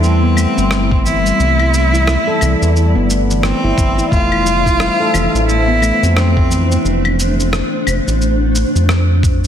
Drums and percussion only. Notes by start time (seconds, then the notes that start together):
0.04 shaker
0.37 claves, shaker
0.58 shaker
0.71 cross-stick, shaker
0.91 kick
1.06 shaker
1.26 shaker
1.40 shaker
1.59 claves
1.74 shaker
1.95 shaker
2.07 cross-stick, shaker
2.41 claves, shaker
2.63 shaker
2.76 shaker
3.10 shaker
3.31 shaker
3.43 cross-stick, shaker
3.78 kick, shaker
3.99 shaker
4.12 kick, shaker
4.32 claves
4.46 shaker
4.66 kick, shaker
4.80 cross-stick, shaker
5.14 claves, shaker
5.36 shaker
5.49 shaker
5.82 claves, shaker
6.04 shaker
6.17 cross-stick, shaker
6.37 kick
6.51 shaker
6.72 shaker
6.86 shaker
7.05 claves
7.20 shaker
7.40 shaker
7.53 cross-stick, shaker
7.87 claves, shaker
8.08 shaker
8.22 shaker
8.56 shaker
8.76 shaker
8.89 cross-stick, shaker
9.23 kick, shaker